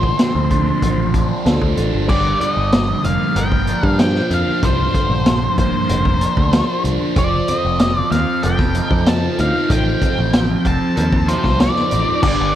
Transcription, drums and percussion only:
0.03 kick
0.19 snare, closed hi-hat
0.36 low conga
0.51 kick, closed hi-hat, high conga, low conga
0.67 high conga
0.82 kick, closed hi-hat
1.14 kick, closed hi-hat, high conga
1.46 snare, closed hi-hat
1.62 kick, high conga
1.77 closed hi-hat, low conga
1.93 high conga
2.09 kick, crash, low conga
2.25 high conga
2.40 closed hi-hat, high conga, low conga
2.72 snare, closed hi-hat
2.88 high conga
3.04 closed hi-hat, low conga
3.36 closed hi-hat, high conga
3.52 kick
3.67 closed hi-hat
3.83 kick
3.99 snare, closed hi-hat
4.15 snare
4.31 closed hi-hat, low conga
4.47 high conga
4.63 kick, closed hi-hat, low conga
4.79 high conga
4.94 kick, closed hi-hat, high conga, low conga
5.26 snare, closed hi-hat
5.42 high conga
5.58 kick, closed hi-hat, low conga
5.89 closed hi-hat, high conga
6.05 kick
6.21 closed hi-hat
6.37 kick
6.53 snare, closed hi-hat
6.85 closed hi-hat, low conga
7.01 high conga
7.16 kick, closed hi-hat, low conga
7.33 high conga
7.48 closed hi-hat, high conga, low conga
7.79 snare, closed hi-hat
7.96 high conga
8.12 snare, closed hi-hat, low conga
8.43 closed hi-hat, high conga
8.59 kick, snare
8.75 closed hi-hat
8.91 kick
9.06 snare, closed hi-hat
9.38 closed hi-hat, low conga
9.55 high conga
9.70 kick, closed hi-hat, low conga
9.87 high conga
10.02 kick, closed hi-hat, high conga, low conga
10.33 snare, closed hi-hat
10.50 high conga
10.65 kick, closed hi-hat, low conga
10.97 closed hi-hat, high conga
11.13 kick
11.28 closed hi-hat
11.44 kick, snare
11.60 snare, closed hi-hat, high conga
11.76 snare, high conga
11.91 closed hi-hat, low conga
12.09 low conga
12.23 kick, crash

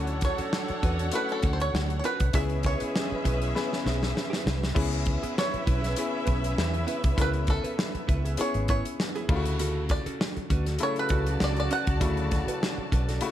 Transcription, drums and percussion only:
0.07 closed hi-hat
0.21 kick, snare, closed hi-hat
0.38 closed hi-hat
0.53 snare
0.68 closed hi-hat
0.83 kick, closed hi-hat
0.99 closed hi-hat
1.12 closed hi-hat
1.29 closed hi-hat
1.43 kick, closed hi-hat
1.60 closed hi-hat
1.75 snare
1.90 closed hi-hat
2.04 closed hi-hat
2.20 kick, closed hi-hat
2.33 kick, closed hi-hat
2.49 closed hi-hat
2.63 kick, snare, closed hi-hat
2.80 closed hi-hat
2.96 snare
3.25 kick, closed hi-hat
3.42 closed hi-hat
3.56 snare
3.73 snare
3.87 snare
4.03 snare
4.17 snare
4.33 snare
4.47 snare
4.63 snare
4.76 kick, crash
5.06 kick, closed hi-hat
5.23 closed hi-hat
5.38 snare
5.54 closed hi-hat
5.67 kick, closed hi-hat
5.84 snare, closed hi-hat
5.96 closed hi-hat
6.27 kick, closed hi-hat
6.44 closed hi-hat
6.58 snare
6.74 closed hi-hat
6.88 closed hi-hat
7.04 kick, closed hi-hat
7.18 kick, closed hi-hat
7.33 closed hi-hat
7.47 kick, snare, closed hi-hat
7.64 closed hi-hat
7.79 snare
7.95 closed hi-hat
8.09 kick, closed hi-hat
8.25 closed hi-hat
8.37 closed hi-hat
8.54 closed hi-hat
8.68 kick, closed hi-hat
8.85 closed hi-hat
9.00 snare
9.16 closed hi-hat
9.29 kick, crash
9.46 closed hi-hat
9.59 closed hi-hat
9.89 kick, snare, closed hi-hat
10.06 closed hi-hat
10.21 snare
10.37 closed hi-hat
10.50 kick, closed hi-hat
10.67 snare, closed hi-hat
10.79 closed hi-hat
10.96 closed hi-hat
11.09 kick, closed hi-hat
11.26 closed hi-hat
11.40 snare
11.57 closed hi-hat
11.71 closed hi-hat
11.87 kick, closed hi-hat
12.01 kick, closed hi-hat
12.17 closed hi-hat
12.31 kick, snare, closed hi-hat
12.48 closed hi-hat
12.63 snare
12.92 kick, closed hi-hat
13.09 snare, closed hi-hat
13.21 closed hi-hat

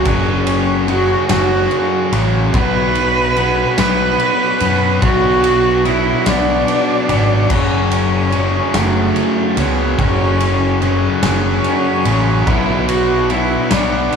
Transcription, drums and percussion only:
0.05 kick, ride
0.47 ride
0.88 ride
1.29 snare, ride
1.71 ride
2.13 ride
2.54 kick, ride
2.95 ride
3.36 ride
3.78 snare, ride
4.19 ride
4.60 ride
5.02 kick, ride
5.44 ride
5.85 ride
6.26 snare, ride
6.68 ride
7.09 ride
7.50 kick, crash
7.91 ride
8.32 ride
8.74 snare, ride
9.16 ride
9.57 ride
9.99 kick, ride
10.40 ride
10.82 ride
11.23 snare, ride
11.64 ride
12.05 ride
12.47 kick, ride
12.89 ride
13.30 ride
13.71 snare, ride
14.12 ride

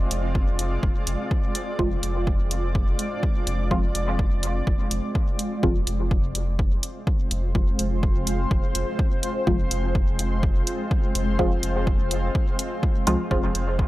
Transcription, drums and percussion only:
0.11 closed hi-hat
0.35 kick
0.59 closed hi-hat
0.83 kick
1.07 closed hi-hat
1.31 kick
1.55 closed hi-hat
1.79 kick
2.03 closed hi-hat
2.27 kick
2.51 closed hi-hat
2.75 kick
2.99 closed hi-hat
3.23 kick
3.47 closed hi-hat
3.71 kick
3.95 closed hi-hat
4.19 kick
4.43 closed hi-hat
4.67 kick
4.91 closed hi-hat
5.15 kick
5.39 closed hi-hat
5.63 kick
5.87 closed hi-hat
6.11 kick
6.35 closed hi-hat
6.59 kick
6.83 closed hi-hat
7.07 kick
7.31 closed hi-hat
7.55 kick
7.79 closed hi-hat
8.03 kick
8.27 closed hi-hat
8.51 kick
8.75 closed hi-hat
8.99 kick
9.23 closed hi-hat
9.47 kick
9.71 closed hi-hat
9.95 kick
10.19 closed hi-hat
10.43 kick
10.67 closed hi-hat
10.91 kick
11.15 closed hi-hat
11.39 kick
11.63 closed hi-hat
11.87 kick
12.11 closed hi-hat
12.35 kick
12.59 closed hi-hat
12.83 kick
13.07 closed hi-hat
13.31 kick
13.55 closed hi-hat
13.79 kick

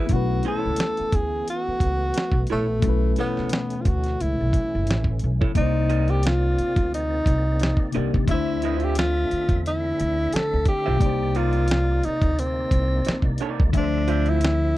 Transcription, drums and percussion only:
0.09 kick, closed hi-hat
0.43 closed hi-hat
0.76 snare, closed hi-hat
0.97 closed hi-hat
1.12 kick, closed hi-hat
1.48 closed hi-hat
1.80 kick, closed hi-hat
2.14 snare, closed hi-hat
2.32 kick
2.47 closed hi-hat
2.82 kick, closed hi-hat
3.16 closed hi-hat
3.37 snare
3.49 snare, closed hi-hat
3.70 closed hi-hat
3.85 kick, closed hi-hat
4.04 snare, closed hi-hat
4.21 closed hi-hat
4.53 kick, closed hi-hat
4.87 snare, closed hi-hat
5.04 kick
5.19 closed hi-hat
5.42 kick
5.55 kick, closed hi-hat
5.90 closed hi-hat
6.08 closed hi-hat
6.23 snare, closed hi-hat
6.58 closed hi-hat
6.76 kick, closed hi-hat
6.94 closed hi-hat
7.26 kick, closed hi-hat
7.60 snare, closed hi-hat
7.77 kick
7.92 closed hi-hat
8.14 kick
8.28 kick, closed hi-hat
8.62 closed hi-hat
8.80 closed hi-hat
8.95 snare, closed hi-hat
9.31 closed hi-hat
9.49 kick, closed hi-hat
9.66 closed hi-hat
10.00 closed hi-hat
10.33 snare, closed hi-hat
10.65 kick, closed hi-hat
11.01 kick, closed hi-hat
11.35 closed hi-hat
11.53 closed hi-hat
11.68 snare, closed hi-hat
12.03 closed hi-hat
12.22 kick, closed hi-hat
12.39 closed hi-hat
12.71 kick, closed hi-hat
13.05 snare, closed hi-hat
13.22 kick
13.38 closed hi-hat
13.60 kick
13.73 kick, closed hi-hat
14.08 closed hi-hat
14.26 closed hi-hat
14.41 snare, closed hi-hat

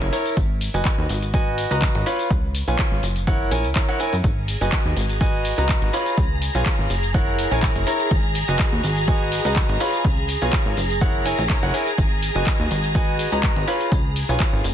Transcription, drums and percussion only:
0.01 closed hi-hat
0.13 open hi-hat, tambourine
0.26 closed hi-hat, tambourine
0.37 kick, closed hi-hat, tambourine
0.61 open hi-hat, tambourine
0.74 closed hi-hat, tambourine
0.85 kick, clap, closed hi-hat, tambourine
1.09 open hi-hat, tambourine
1.22 closed hi-hat, tambourine
1.34 kick, closed hi-hat, tambourine
1.58 open hi-hat, tambourine
1.71 closed hi-hat, tambourine
1.82 kick, clap, closed hi-hat, tambourine
1.95 closed hi-hat
2.06 open hi-hat, tambourine
2.19 closed hi-hat, tambourine
2.30 kick, closed hi-hat, tambourine
2.55 open hi-hat, tambourine
2.68 closed hi-hat, tambourine
2.79 kick, clap, closed hi-hat, tambourine
3.03 open hi-hat, tambourine
3.16 closed hi-hat, tambourine
3.27 kick, closed hi-hat, tambourine
3.51 open hi-hat, tambourine
3.64 closed hi-hat, tambourine
3.75 kick, clap, closed hi-hat, tambourine
3.89 closed hi-hat
4.00 open hi-hat, tambourine
4.13 closed hi-hat, tambourine
4.24 kick, closed hi-hat, tambourine
4.48 open hi-hat, tambourine
4.61 closed hi-hat, tambourine
4.72 kick, clap, closed hi-hat, tambourine
4.97 open hi-hat, tambourine
5.10 closed hi-hat, tambourine
5.21 kick, closed hi-hat, tambourine
5.45 open hi-hat, tambourine
5.58 closed hi-hat, tambourine
5.69 kick, clap, closed hi-hat, tambourine
5.82 closed hi-hat
5.93 open hi-hat, tambourine
6.06 closed hi-hat, tambourine
6.18 kick, closed hi-hat, tambourine
6.42 open hi-hat, tambourine
6.55 closed hi-hat, tambourine
6.66 kick, clap, closed hi-hat, tambourine
6.90 open hi-hat, tambourine
7.03 closed hi-hat, tambourine
7.14 kick, closed hi-hat, tambourine
7.39 open hi-hat, tambourine
7.52 closed hi-hat, tambourine
7.63 kick, clap, closed hi-hat, tambourine
7.76 closed hi-hat
7.87 open hi-hat, tambourine
8.00 closed hi-hat, tambourine
8.11 kick, closed hi-hat, tambourine
8.35 open hi-hat, tambourine
8.48 closed hi-hat, tambourine
8.59 kick, clap, closed hi-hat, tambourine
8.84 open hi-hat, tambourine
8.97 closed hi-hat, tambourine
9.08 kick, closed hi-hat, tambourine
9.32 open hi-hat, tambourine
9.45 closed hi-hat, tambourine
9.56 kick, clap, closed hi-hat, tambourine
9.69 closed hi-hat
9.80 open hi-hat, tambourine
9.93 closed hi-hat, tambourine
10.05 kick, closed hi-hat, tambourine
10.29 open hi-hat, tambourine
10.42 closed hi-hat, tambourine
10.53 kick, clap, closed hi-hat, tambourine
10.77 open hi-hat, tambourine
10.90 closed hi-hat, tambourine
11.01 kick, closed hi-hat, tambourine
11.26 open hi-hat, tambourine
11.39 closed hi-hat, tambourine
11.50 kick, clap, closed hi-hat, tambourine
11.63 closed hi-hat
11.74 open hi-hat, tambourine
11.87 closed hi-hat, tambourine
11.98 kick, closed hi-hat, tambourine
12.22 open hi-hat, tambourine
12.35 closed hi-hat, tambourine
12.47 kick, clap, closed hi-hat, tambourine
12.71 open hi-hat, tambourine
12.84 closed hi-hat, tambourine
12.95 kick, closed hi-hat, tambourine
13.19 open hi-hat, tambourine
13.32 closed hi-hat, tambourine
13.43 kick, clap, closed hi-hat, tambourine
13.56 closed hi-hat
13.68 open hi-hat, tambourine
13.81 closed hi-hat, tambourine
13.92 kick, closed hi-hat, tambourine
14.16 open hi-hat, tambourine
14.29 closed hi-hat, tambourine
14.40 kick, clap, closed hi-hat, tambourine
14.64 open hi-hat, tambourine

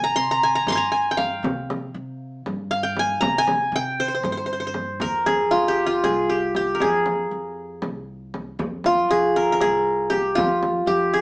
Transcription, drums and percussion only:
0.67 frame drum
1.19 frame drum
1.44 frame drum
1.70 frame drum
2.46 frame drum
2.97 frame drum
3.22 frame drum
3.47 frame drum
4.24 frame drum
4.74 frame drum
5.00 frame drum
5.27 frame drum
6.04 frame drum
6.55 frame drum
6.80 frame drum
7.06 frame drum
7.82 frame drum
8.34 frame drum
8.59 frame drum
8.84 frame drum
9.61 frame drum
10.11 frame drum
10.38 frame drum
10.63 frame drum

